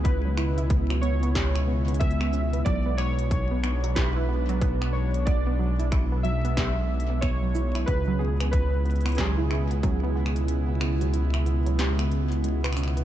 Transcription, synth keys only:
X:1
M:4/4
L:1/8
Q:"Swing 16ths" 1/4=92
K:C#phr
V:1 name="Synth keys"
B2 z c3 e2 | d c3 B3 c | d2 z e3 c2 | B G B2 G4- |
G6 z2 |]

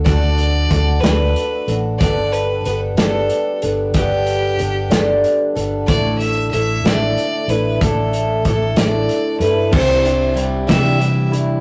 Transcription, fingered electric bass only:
X:1
M:6/8
L:1/8
Q:3/8=62
K:Glyd
V:1 name="Fingered electric bass" clef=bass
D,,2 D,, D,, z A,,, | G,,,2 G,,, G,,, z G,,, | G,,,2 G,,, G,,, z G,,, | A,,,2 A,,, A,,, z A,,, |
A,,,2 A,,, A,,, z G,, | =C,,3 =C,3 |]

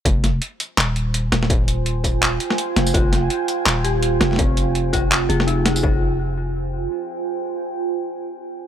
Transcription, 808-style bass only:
X:1
M:4/4
L:1/8
Q:"Swing 16ths" 1/4=166
K:Fm
V:1 name="808-style bass" clef=bass
F,,,2 z2 E,,,3 E,,,- | E,,,4- E,,, z2 F,,, | F,,,2 z2 E,,,3 F,,,- | F,,,4- F,,, F,,,3 |
F,,,6 z2 | z8 |]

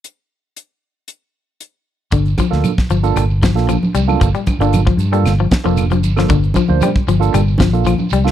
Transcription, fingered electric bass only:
X:1
M:4/4
L:1/16
Q:1/4=115
K:Gm
V:1 name="Fingered electric bass" clef=bass
z16 | G,,,2 z D,, z2 G,,,2 G,,,3 B,,,2 z C,,2 | G,,, z2 G,,,3 G,,2 G,,,2 z F,,,3 G,,,2 | G,,,2 z D,, z2 G,,,2 G,,,3 B,,,2 z C,,2 |]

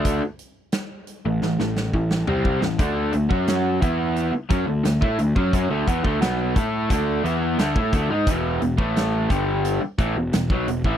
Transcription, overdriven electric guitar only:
X:1
M:4/4
L:1/16
Q:1/4=88
K:Dlyd
V:1 name="Overdriven electric guitar" clef=bass
[D,A,D] z6 [A,,E,] [A,,E,] [A,,E,]2 [A,,E,]2 [=C,=G,=C]2 [A,,E,] | [D,A,D]2 [D,A,] [F,CF]3 [E,B,E]3 z [F,C] [D,A,] [D,A,] [A,E] [D,A,] [F,C] | [F,C] [D,A,] [E,B,] [D,A,] [B,,F,B,]2 [A,EA]2 [D,A,D]2 [E,B,E]2 [D,A,] [A,E] [D,A,] [G,^D] | [E,,B,,E,]2 [E,,B,,] [A,,E,A,]3 [=G,,D,=G,]3 z [A,,E,] [E,,B,,] [E,,B,,] [B,,F,] [E,,B,,] [A,,E,] |]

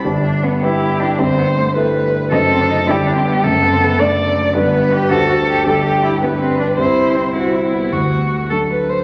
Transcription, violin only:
X:1
M:6/8
L:1/8
Q:3/8=107
K:G
V:1 name="Violin"
z3 G3 | c3 B3 | A3 G3 | A3 d3 |
B3 A3 | G3 B3 | c3 E3 | F3 A B c |]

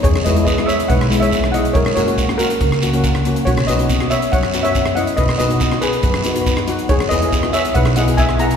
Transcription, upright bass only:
X:1
M:4/4
L:1/16
Q:1/4=140
K:B
V:1 name="Upright bass" clef=bass
E,, z E,,2 z4 B,,,8 | F,, z F,,2 z4 C,,8 | B,,, z B,,,2 z4 F,,8 | B,,, z B,,,2 z4 F,,8 |
E,, z E,,2 z4 B,,,8 |]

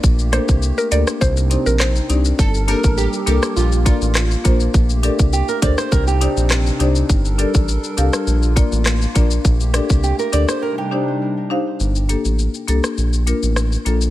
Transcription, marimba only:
X:1
M:4/4
L:1/8
Q:1/4=102
K:Gm
V:1 name="Marimba"
z [B,DGAB] z [B,DGAB] z [CDEGc] z [CDEGd] | z [B,DGAB] z [B,DGAB] z [B,DFBd] z [B,DFBc] | z [DGABd] z [DGABc] z [DEGcd] z [DEGcd] | z [DGABd] z [DGABf] z [B,DFBd] z [B,DFBd] |
z [DGABd] z [DGABd] z [DEGcd] z [DEGcf] | z [B,DGA] z [B,DGA] z [B,DFB] z [B,DFA] |]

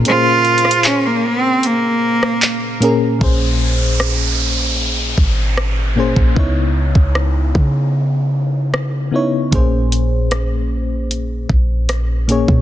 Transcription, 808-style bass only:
X:1
M:4/4
L:1/16
Q:1/4=76
K:Bbm
V:1 name="808-style bass" clef=bass
z16 | B,,,8- B,,,2 A,,,4- A,,, B,,, | D,,3 D,,3 D,8- D,2 | B,,,8- B,,,2 B,,,4- B,,, B,, |]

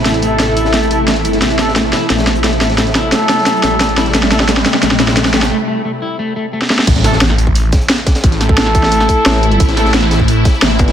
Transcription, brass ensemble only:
X:1
M:4/4
L:1/16
Q:1/4=176
K:Aphr
V:1 name="Brass ensemble"
z2 [A,EA]8 [A,EA] z4 z | z2 [A,EA] z12 z | z2 [A,EA]12- [A,EA] [A,EA] | z2 [A,EA] z12 z |
z16 | z2 [A,EA] z12 z | z2 [A,EA]12- [A,EA] [A,EA] | z2 [A,EA] z12 z |]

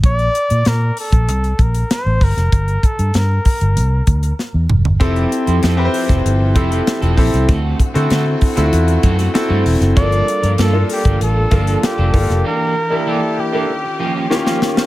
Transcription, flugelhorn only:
X:1
M:4/4
L:1/8
Q:1/4=97
K:Gdor
V:1 name="Flugelhorn"
d2 B A2 B c B- | B A B4 z2 | z8 | z8 |
d2 A G A2 G2 | B2 A G4 z |]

